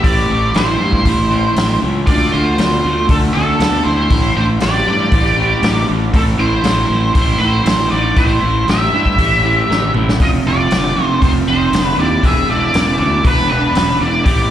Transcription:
0.03 A1 A2 E3 G4 D5, kick, open hi-hat
0.30 A1 A2 E3
0.54 A1 A2 F#3 E4 C5, snare, open hi-hat
0.80 G2 A2 E3
0.93 kick
1.05 A1 A2 E3, kick, open hi-hat
1.31 A2 E3
1.56 A1 A2 F#3, snare, open hi-hat
1.82 C#2 A2 E3
2.07 D2 D3 A3 F4 D5, kick, open hi-hat
2.32 D2 D3 A3 F4 C5
2.58 D2 D3 B3, snare, open hi-hat
2.84 D2 D3 A3
3.09 D2 D3 A3 D4 A4, kick, open hi-hat
3.34 D2 D3 A3 D4 A4
3.59 D2 D3 B3, snare, open hi-hat
3.84 D2 D3 A3 E4 C5
4.10 A1 A2 E3, kick, open hi-hat
4.36 A1 A2 E3 D4 C5
4.60 A1 A2 F#3 G4 D5, snare, open hi-hat
4.86 G2 A2 E3
5.12 A1 A2 E3, kick, open hi-hat
5.37 A2 E3
5.63 A1 A2 F#3, snare, open hi-hat
5.88 A1 A2 E3
6.13 A1 A2 E3 C4 A4, kick, open hi-hat
6.38 A1 A2 E3 E4 C5
6.64 A1 A2 F#3, snare, open hi-hat
6.89 A1 A2 E3
7.14 A1 A2 E3 E4 C5, kick, open hi-hat
7.39 A1 A2 E3 E4 C5
7.66 A1 A2 F#3, snare, open hi-hat
7.90 A1 A2 E3 D5
7.95 D#4
8.16 A1 A2 E3 E4 C5, kick, open hi-hat
8.42 A1 A2 E3
8.68 A1 A2 F#3 G4 E5, snare, open hi-hat
8.93 G2 A2 E3
9.06 kick
9.18 A1 A2 E3, kick, open hi-hat
9.43 A2 E3
9.69 A1 A2 F#3, snare
9.82 mid tom
9.94 A1 A2 E3, mid tom
10.09 snare
10.20 F1 F2 C3 F4 D#5, kick, open hi-hat
10.45 F1 F2 C3 F4 D5
10.70 F1 F2 D3, snare, open hi-hat
10.96 F1 F2 C3 D#4
11.05 C5
11.21 F1 F2 C3 D#4 C5, kick, open hi-hat
11.47 F1 F2 C3 D#4 C5
11.72 F1 F2 D3, snare, open hi-hat
11.83 D4 B4
11.97 D#2 F2 C3 E4 D5
12.23 E1 E2 B2 G#4 E5, kick, open hi-hat
12.48 E1 E2 B2 E4 D5
12.74 E1 E2 C#3, snare, open hi-hat
12.99 D2 E2 B2 E4 D5
13.24 E1 E2 B2 D4 B4, kick, open hi-hat
13.50 E2 B2 D4 B4
13.75 E1 E2 C#3, snare, open hi-hat
14.00 E1 E2 B2 E4 D5
14.25 A1 A2 E3 G4 D5, kick, open hi-hat

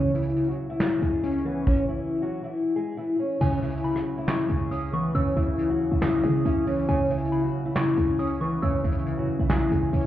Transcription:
Already playing: C#2 C#3 C#4 C#5
0.15 C#3 E3 E4, closed hi-hat
0.22 closed hi-hat
0.29 closed hi-hat
0.36 C#3, closed hi-hat
0.44 closed hi-hat
0.48 F#3 F#4, closed hi-hat
0.70 E3 E4
0.80 C#3, snare, clap
1.02 C#2 C#3 G#3 G#4, closed hi-hat
1.24 C#4, closed hi-hat
1.31 closed hi-hat
1.38 closed hi-hat
1.45 E3 B3 B4
1.67 C#4 C#5, kick, crash
1.89 E3 E4
2.22 F#3 F#4
2.44 E3 E4
2.76 G#3 G#4
2.97 E3 E4
3.19 C#4 C#5
3.41 C#2 C#3 C#4 C#5 G#5, crash
3.62 C#3 E3 E4, closed hi-hat
3.70 closed hi-hat
3.77 closed hi-hat
3.84 C#3 B5, closed hi-hat
3.92 closed hi-hat
3.96 F#3 F#4, cross-stick, closed hi-hat
4.18 E3 E4
4.28 C#3 C#6, snare, clap
4.49 C#2 C#3 G#3 G#4, closed hi-hat
4.71 C#4 D#6, closed hi-hat
4.79 closed hi-hat
4.86 closed hi-hat
4.93 E3 B3 B4 C#6
5.15 C#2 C#3 C#4 C#5 E6, closed hi-hat
5.36 C#2 C#3 E3 E4, closed hi-hat
5.58 C#3, closed hi-hat
5.70 F#3 F#4
5.80 D#2
5.92 C#2 E3 E4
6.02 C#3 D#6, snare, clap
6.23 C#3 G#3 G#4, closed hi-hat
6.45 C#2 E3 C#4 E4, closed hi-hat
6.67 E3 C#4 C#5, open hi-hat
6.88 C#2 C#3 C#4 C#5 G#5, closed hi-hat
7.10 C#3 E3 E4, closed hi-hat
7.18 closed hi-hat
7.25 closed hi-hat
7.32 C#3 B5, closed hi-hat
7.39 closed hi-hat
7.43 F#3 F#4, closed hi-hat
7.65 E3 E4
7.76 C#3 C#6, snare, clap
7.97 C#2 C#3 G#3 G#4, closed hi-hat
8.19 C#4 D#6, closed hi-hat
8.26 closed hi-hat
8.34 closed hi-hat
8.41 E3 B3 B4 C#6
8.62 C#2 C#3 C#4 C#5 E6, closed hi-hat
8.84 C#2 C#3 E3 E4, closed hi-hat
8.92 closed hi-hat
8.99 closed hi-hat
9.06 C#3, closed hi-hat
9.18 C#3 F#3 F#4
9.28 C#2
9.39 B1 E3 E4
9.50 C#3 G#5, snare, clap
9.71 C#2 C#3 G#3 G#4, closed hi-hat
9.93 C#2 E3 C#4 E4, closed hi-hat
10.00 closed hi-hat

